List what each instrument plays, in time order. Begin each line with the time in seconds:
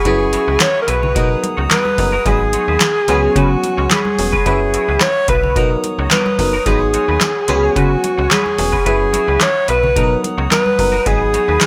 Already playing: flute section G#4 F#5 C#6
0.05 fm bass F#1, fm electric piano F#3 C#4 E4 B4, clean electric guitar B3 E4 F#4 B4, alto saxophone G#4, flute section E5, kick, closed hi-hat, muted conga
0.20 muted clean electric guitar stroke
0.32 clean electric guitar B3 E4 F#4 C#5, closed hi-hat, muted conga
0.47 fm bass C#2, clean electric guitar B3 E4 F#4 B4
0.60 alto saxophone C#5, muted clean electric guitar stroke, snare, clap, closed hi-hat, high conga
0.74 muted clean electric guitar stroke
0.82 alto saxophone A#4
0.87 fm bass B1, clean electric guitar B3 E4 F#4 B4, alto saxophone B4, closed hi-hat
1.02 clean electric guitar B3 E4 F#4 C#5, low conga
1.14 fm bass B2, fm electric piano F#3 B3 D#4 A#4, clean electric guitar A#3 D#4 F#4 A#4, flute section F#5 A#5 D#6, kick, closed hi-hat
1.29 muted clean electric guitar stroke
1.42 muted clean electric guitar stroke, closed hi-hat, muted conga
1.57 fm bass C#2, clean electric guitar A#3 D#4 F#4 C#5
1.70 clean electric guitar A#3 D#4 F#4 A#4, alto saxophone B4, snare, clap, closed hi-hat, high conga
1.85 muted clean electric guitar stroke, high conga
1.98 fm bass F#1, fm electric piano F#3 B3 D#4 A#4, muted clean electric guitar stroke, kick, open hi-hat
2.12 clean electric guitar A#3 D#4 F#4 A#4
2.25 fm bass G#1, fm electric piano F#3 B3 D#4 G#4, clean electric guitar G#3 D#4 F#4 B4, alto saxophone G#4, flute section G#5, kick, closed hi-hat, muted conga
2.40 muted clean electric guitar stroke
2.53 clean electric guitar G#3 D#4 F#4 C#5, closed hi-hat, muted conga
2.68 fm bass D#2, clean electric guitar G#3 D#4 F#4 B4
2.80 muted clean electric guitar stroke, snare, clap, closed hi-hat, high conga
2.96 muted clean electric guitar stroke
3.08 fm bass C#2, fm electric piano F#3 B3 C#4 G#4, clean electric guitar G#3 C#4 F#4 B4, flute section C#5 F#5 C#6, closed hi-hat, low conga
3.23 clean electric guitar G#3 C#4 F#4 C#5
3.36 fm bass C#3, clean electric guitar G#3 C#4 F#4 B4, alto saxophone F#4, kick, closed hi-hat, low conga
3.51 muted clean electric guitar stroke
3.63 muted clean electric guitar stroke, closed hi-hat, muted conga
3.77 fm bass C#2, clean electric guitar G#3 C#4 F#4 C#5
3.90 clean electric guitar G#3 C#4 F#4 B4, alto saxophone G#4, snare, clap, closed hi-hat, high conga
4.05 muted clean electric guitar stroke, high conga
4.18 fm bass E1, fm electric piano F#3 B3 C#4 G#4, muted clean electric guitar stroke, open hi-hat
4.32 clean electric guitar G#3 C#4 F#4 B4, kick
4.46 fm bass F#1, fm electric piano F#3 C#4 E4 B4, clean electric guitar B3 E4 F#4 B4, alto saxophone G#4, flute section E5, kick, closed hi-hat, muted conga
4.60 muted clean electric guitar stroke
4.73 clean electric guitar B3 E4 F#4 C#5, closed hi-hat
4.88 fm bass C#2, clean electric guitar B3 E4 F#4 B4
5.00 alto saxophone C#5, muted clean electric guitar stroke, snare, clap, closed hi-hat, high conga
5.15 muted clean electric guitar stroke
5.28 fm bass B1, clean electric guitar B3 E4 F#4 B4, alto saxophone B4, kick, closed hi-hat
5.43 clean electric guitar B3 E4 F#4 C#5, low conga
5.55 fm bass B2, fm electric piano F#3 B3 D#4 A#4, clean electric guitar A#3 D#4 F#4 A#4, flute section A#5 D#6, kick, closed hi-hat
5.70 muted clean electric guitar stroke
5.84 muted clean electric guitar stroke, closed hi-hat, muted conga
5.99 fm bass C#2, clean electric guitar A#3 D#4 F#4 C#5
6.11 clean electric guitar A#3 D#4 F#4 A#4, alto saxophone B4, snare, clap, closed hi-hat, high conga
6.26 muted clean electric guitar stroke, high conga
6.39 fm bass F#1, fm electric piano F#3 B3 D#4 A#4, muted clean electric guitar stroke, kick, open hi-hat
6.53 clean electric guitar A#3 D#4 F#4 A#4
6.65 fm bass G#1, fm electric piano F#3 B3 D#4 G#4, clean electric guitar G#3 D#4 F#4 B4, alto saxophone G#4, flute section F#5 G#5, kick, closed hi-hat, muted conga
6.80 muted clean electric guitar stroke
6.93 clean electric guitar G#3 D#4 F#4 C#5, closed hi-hat, muted conga
7.08 fm bass D#2, clean electric guitar G#3 D#4 F#4 B4
7.21 muted clean electric guitar stroke, snare, clap, closed hi-hat, high conga
7.35 muted clean electric guitar stroke
7.48 fm bass C#2, fm electric piano F#3 B3 C#4 G#4, clean electric guitar G#3 C#4 F#4 B4, flute section C#6, closed hi-hat, low conga
7.63 clean electric guitar G#3 C#4 F#4 C#5
7.75 fm bass C#3, clean electric guitar G#3 C#4 F#4 B4, alto saxophone F#4, kick, closed hi-hat, low conga
7.90 muted clean electric guitar stroke
8.03 muted clean electric guitar stroke, closed hi-hat, muted conga
8.18 fm bass C#2, clean electric guitar G#3 C#4 F#4 C#5
8.30 clean electric guitar G#3 C#4 F#4 B4, alto saxophone G#4, snare, clap, closed hi-hat, high conga
8.45 muted clean electric guitar stroke, high conga
8.58 fm bass E1, fm electric piano F#3 B3 C#4 G#4, muted clean electric guitar stroke, open hi-hat
8.72 clean electric guitar G#3 C#4 F#4 B4, kick
8.85 fm bass F#1, fm electric piano F#3 C#4 E4 B4, clean electric guitar B3 E4 F#4 B4, alto saxophone G#4, flute section E5, kick, closed hi-hat, muted conga
8.99 muted clean electric guitar stroke
9.12 clean electric guitar B3 E4 F#4 C#5, closed hi-hat, muted conga
9.27 fm bass C#2, clean electric guitar B3 E4 F#4 B4
9.40 alto saxophone C#5, muted clean electric guitar stroke, snare, clap, closed hi-hat, high conga
9.55 muted clean electric guitar stroke
9.68 fm bass B1, clean electric guitar B3 E4 F#4 B4, alto saxophone B4, closed hi-hat
9.83 clean electric guitar B3 E4 F#4 C#5, low conga
9.95 fm bass B2, fm electric piano F#3 B3 D#4 A4, clean electric guitar A#3 D#4 F#4 A#4, flute section A#5 D#6, kick, closed hi-hat
10.03 fm electric piano A#4
10.10 muted clean electric guitar stroke
10.23 muted clean electric guitar stroke, closed hi-hat, muted conga
10.38 fm bass C#2, clean electric guitar A#3 D#4 F#4 C#5
10.50 clean electric guitar A#3 D#4 F#4 A#4, alto saxophone B4, snare, clap, closed hi-hat, high conga
10.66 high conga
10.78 fm bass F#1, fm electric piano F#3 B3 D#4 A#4, muted clean electric guitar stroke, kick, open hi-hat
10.92 clean electric guitar A#3 D#4 F#4 A#4
11.05 fm bass G#1, fm electric piano F#3 B3 D#4 G#4, clean electric guitar B3 D#4 F#4 B4, alto saxophone G#4, flute section G#5 D#6, kick, closed hi-hat, muted conga
11.20 muted clean electric guitar stroke
11.33 clean electric guitar B3 D#4 F#4 C#5, closed hi-hat, muted conga
11.48 fm bass D#2, clean electric guitar B3 D#4 F#4 B4
11.61 muted clean electric guitar stroke, snare, clap, closed hi-hat, high conga